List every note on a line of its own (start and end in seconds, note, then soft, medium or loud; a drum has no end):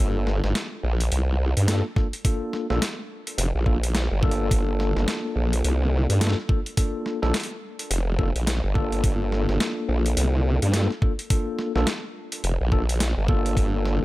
0.00 0.41 G1 medium
0.00 0.27 A#3 medium
0.00 0.27 D4 medium
0.00 0.27 F4 medium
0.00 0.27 A4 loud
0.27 snare medium
0.44 0.53 G1 loud
0.44 snare medium
0.55 snare loud
0.55 closed hi-hat medium
0.83 1.10 A#1 loud
1.00 closed hi-hat medium
1.12 1.54 C2 loud
1.12 closed hi-hat medium
1.57 1.82 G2 medium
1.57 closed hi-hat medium
1.68 1.84 A#3 medium
1.68 1.84 D4 medium
1.68 1.84 F4 medium
1.68 1.84 A4 medium
1.68 snare loud
1.68 closed hi-hat medium
1.96 2.06 A#3 medium
1.96 2.06 D4 medium
1.96 2.06 F4 medium
1.96 2.06 A4 medium
1.96 kick loud
1.96 snare soft
2.13 closed hi-hat soft
2.25 2.66 A#3 medium
2.25 2.66 D4 medium
2.25 2.66 F4 medium
2.25 2.66 A4 medium
2.25 kick loud
2.25 closed hi-hat medium
2.53 snare medium
2.70 2.80 A#1 loud
2.70 2.81 A#3 medium
2.70 2.81 D4 medium
2.70 2.81 F4 medium
2.70 2.81 A4 loud
2.70 snare medium
2.82 snare loud
2.82 closed hi-hat medium
3.27 closed hi-hat medium
3.38 3.52 F1 loud
3.38 closed hi-hat medium
3.55 4.09 A#1 medium
3.66 3.76 A#3 medium
3.66 3.76 D4 medium
3.66 3.76 F4 medium
3.66 3.76 A4 medium
3.66 kick medium
3.83 closed hi-hat medium
3.95 snare loud
3.95 closed hi-hat medium
4.11 4.49 G1 medium
4.23 6.18 A#3 loud
4.23 6.18 D4 medium
4.23 6.18 F4 medium
4.23 6.18 A4 loud
4.23 kick loud
4.31 closed hi-hat soft
4.51 4.94 G1 loud
4.51 kick loud
4.51 closed hi-hat medium
4.80 snare soft
4.96 5.06 G1 loud
4.96 snare medium
5.08 snare loud
5.08 closed hi-hat medium
5.36 5.62 A#1 medium
5.53 closed hi-hat medium
5.64 6.07 C2 medium
5.64 closed hi-hat medium
6.09 6.35 G2 loud
6.09 closed hi-hat medium
6.21 6.37 A#3 medium
6.21 6.37 D4 medium
6.21 6.37 F4 medium
6.21 6.37 A4 medium
6.21 snare loud
6.21 closed hi-hat medium
6.27 snare medium
6.30 snare medium
6.38 snare soft
6.49 6.59 A#3 medium
6.49 6.59 D4 medium
6.49 6.59 F4 medium
6.49 6.59 A4 medium
6.49 kick loud
6.66 closed hi-hat soft
6.77 7.19 A#3 medium
6.77 7.19 D4 medium
6.77 7.19 F4 medium
6.77 7.19 A4 medium
6.77 kick loud
6.77 closed hi-hat medium
7.06 snare soft
7.22 7.32 A#1 medium
7.22 7.33 A#3 medium
7.22 7.33 D4 medium
7.22 7.33 F4 medium
7.22 7.33 A4 medium
7.22 snare soft
7.34 snare loud
7.34 closed hi-hat medium
7.40 closed hi-hat medium
7.43 closed hi-hat soft
7.79 closed hi-hat medium
7.90 8.33 F1 loud
7.90 closed hi-hat medium
8.18 8.29 A#3 medium
8.18 8.29 D4 medium
8.18 8.29 F4 medium
8.18 8.29 A4 loud
8.18 kick medium
8.35 8.61 A#1 loud
8.35 closed hi-hat medium
8.47 snare loud
8.47 closed hi-hat medium
8.64 9.02 G1 medium
8.75 10.71 A#3 loud
8.75 10.71 D4 medium
8.75 10.71 F4 medium
8.75 10.71 A4 loud
8.75 kick loud
8.92 closed hi-hat soft
9.04 9.46 G1 loud
9.04 kick loud
9.04 closed hi-hat medium
9.32 snare soft
9.49 9.59 G1 medium
9.49 snare soft
9.60 snare loud
9.60 closed hi-hat medium
9.88 10.15 A#1 medium
10.06 closed hi-hat medium
10.17 10.59 C2 loud
10.17 closed hi-hat medium
10.62 10.88 G2 medium
10.62 closed hi-hat soft
10.74 10.90 A#3 medium
10.74 10.90 D4 medium
10.74 10.90 F4 medium
10.74 10.90 A4 medium
10.74 snare loud
10.74 closed hi-hat medium
10.91 snare soft
11.02 11.12 A#3 medium
11.02 11.12 D4 medium
11.02 11.12 F4 medium
11.02 11.12 A4 medium
11.02 kick loud
11.19 closed hi-hat soft
11.30 11.72 A#3 medium
11.30 11.72 D4 medium
11.30 11.72 F4 medium
11.30 11.72 A4 medium
11.30 kick loud
11.30 closed hi-hat medium
11.59 snare soft
11.75 11.85 A#1 loud
11.75 11.87 A#3 medium
11.75 11.87 D4 medium
11.75 11.87 F4 medium
11.75 11.87 A4 medium
11.75 snare soft
11.87 snare loud
11.87 closed hi-hat medium
12.32 closed hi-hat medium
12.44 12.58 F1 loud
12.44 closed hi-hat medium
12.61 13.15 A#1 loud
12.72 12.82 A#3 medium
12.72 12.82 D4 medium
12.72 12.82 F4 medium
12.72 12.82 A4 loud
12.72 kick medium
12.89 closed hi-hat soft
13.00 snare loud
13.00 closed hi-hat medium
13.17 13.55 G1 medium
13.28 14.05 A#3 medium
13.28 14.05 D4 medium
13.28 14.05 F4 medium
13.28 14.05 A4 loud
13.28 kick loud
13.46 closed hi-hat soft
13.57 13.99 G1 medium
13.57 kick loud
13.57 closed hi-hat medium
13.86 snare medium